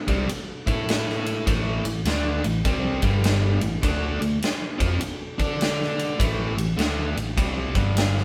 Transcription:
0.07 0.27 C2 medium
0.07 0.27 C3 medium
0.07 0.28 G3 medium
0.07 0.28 C4 medium
0.07 kick loud
0.07 ride medium
0.29 muted distorted electric guitar stroke medium
0.29 muted picked electric bass stroke soft
0.29 ride medium
0.66 1.43 A2 loud
0.66 1.46 A3 medium
0.66 1.46 E4 medium
0.66 1.47 A4 medium
0.66 kick loud
0.66 ride medium
0.89 snare loud
0.89 ride medium
1.10 snare soft
1.26 ride medium
1.46 1.82 A1 medium
1.46 1.83 A2 medium
1.46 1.83 E3 medium
1.46 1.84 A3 loud
1.46 kick loud
1.46 ride medium
1.83 2.03 A1 medium
1.83 2.01 A2 medium
1.83 2.01 E3 medium
1.83 ride medium
2.05 2.41 D2 loud
2.05 2.42 D3 medium
2.05 2.43 A3 medium
2.05 2.43 D4 loud
2.05 snare medium
2.05 ride medium
2.44 2.63 A1 medium
2.44 2.61 A2 medium
2.44 2.61 E3 medium
2.44 ride medium
2.65 3.00 C2 medium
2.65 3.01 C3 loud
2.65 3.02 G3 loud
2.65 3.02 C4 loud
2.65 kick loud
2.65 ride medium
3.02 3.58 G1 loud
3.02 3.60 G2 medium
3.02 3.60 D3 medium
3.02 3.61 G3 medium
3.02 kick medium
3.02 ride medium
3.24 snare loud
3.24 ride loud
3.60 3.81 A1 medium
3.60 3.78 A2 medium
3.60 3.79 E3 medium
3.60 ride medium
3.82 4.19 D2 medium
3.82 4.18 D3 medium
3.82 4.19 A3 medium
3.82 4.20 D4 loud
3.82 kick loud
3.82 ride loud
4.19 4.40 D2 medium
4.19 4.37 D3 medium
4.19 4.37 A3 medium
4.19 ride medium
4.42 snare loud
4.42 ride medium
4.78 5.00 F2 loud
4.78 4.99 F3 medium
4.78 5.00 C4 medium
4.78 5.00 F4 medium
4.78 kick loud
4.78 ride medium
5.00 muted picked electric bass stroke soft
5.00 muted distorted electric guitar stroke medium
5.00 ride medium
5.38 6.15 D3 medium
5.38 6.18 D4 medium
5.38 6.19 A4 medium
5.38 6.19 D5 loud
5.38 kick medium
5.38 ride medium
5.61 snare loud
5.61 ride medium
5.82 snare soft
5.99 ride medium
6.18 6.55 A1 medium
6.18 6.55 A2 medium
6.18 6.55 E3 loud
6.18 6.56 A3 loud
6.18 kick loud
6.18 ride loud
6.56 6.76 A1 medium
6.56 6.74 A2 medium
6.56 6.74 E3 medium
6.56 ride medium
6.76 7.13 D2 loud
6.76 7.14 D3 medium
6.76 7.15 A3 loud
6.76 7.15 D4 medium
6.76 snare medium
6.76 ride medium
7.16 7.36 A1 medium
7.16 7.33 A2 medium
7.16 7.33 E3 medium
7.16 ride medium
7.37 7.73 C2 medium
7.37 7.74 C3 loud
7.37 7.74 G3 loud
7.37 7.74 C4 loud
7.37 kick loud
7.37 ride medium
7.75 8.24 G1 medium
7.75 8.24 G2 medium
7.75 8.24 D3 medium
7.75 8.24 G3 medium
7.75 kick loud
7.75 ride medium
7.97 snare loud
7.97 ride loud
8.18 snare soft

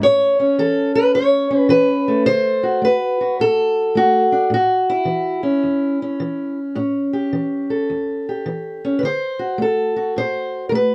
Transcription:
0.02 0.54 A2 medium
0.02 0.59 C#5 loud
0.40 1.49 C#4 soft
0.59 1.11 E3 medium
0.59 0.95 A4 loud
0.95 1.14 B4 loud
1.14 1.67 E2 medium
1.14 1.59 C#5 loud
1.51 2.27 C#4 soft
1.59 1.70 B4 loud
1.69 2.22 E3 medium
1.69 2.26 B4 loud
2.08 2.82 A3 medium
2.26 2.79 D3 medium
2.26 2.83 C5 loud
2.63 3.19 F#4 soft
2.82 3.35 A3 medium
2.82 3.40 B4 loud
3.21 3.96 F#4 soft
3.40 3.92 A2 medium
3.40 4.53 A4 loud
3.95 4.48 A3 medium
3.95 4.53 F#4 medium
4.32 4.50 D4 soft
4.50 5.03 A2 medium
4.50 5.43 F#4 medium
4.90 6.58 E4 medium
5.05 5.59 E3 medium
5.43 6.00 C#4 soft
5.63 6.16 E2 medium
6.02 6.74 C#4 soft
6.20 6.73 E3 medium
6.75 7.29 A2 medium
6.75 8.83 C#4 medium
7.13 8.27 G4 soft
7.33 7.86 E3 medium
7.70 8.98 A4 medium
7.90 8.43 E2 medium
8.29 9.02 G4 soft
8.46 8.99 E3 medium
8.85 9.02 C#4 medium
8.99 9.56 D3 medium
8.99 9.04 B4 medium
9.05 9.61 C5 loud
9.39 9.96 F#4 soft
9.58 10.12 A3 medium
9.58 10.17 A4 medium
9.96 10.95 F#4 soft
10.16 10.69 A2 medium
10.16 10.69 C5 loud
10.69 10.95 A3 medium
10.69 10.74 A#4 medium
10.75 10.95 B4 medium

